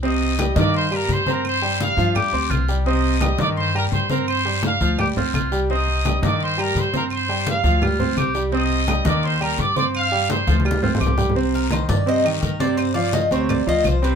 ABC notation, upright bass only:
X:1
M:4/4
L:1/8
Q:1/4=170
K:Cm
V:1 name="Upright bass" clef=bass
C,,3 G,,3 G,,2- | G,,3 G,,2 D,, C,,2- | C,,3 G,,3 G,,2- | G,,3 D,,2 D,, C,,2- |
C,,3 G,,3 G,,2- | G,,3 D,,3 C,,2- | C,,3 E,,3 G,,2- | G,,3 D,,3 C,,2- |
C,,3 G,,3 G,,2- | G,,3 D,,2 D,, C,,2 |]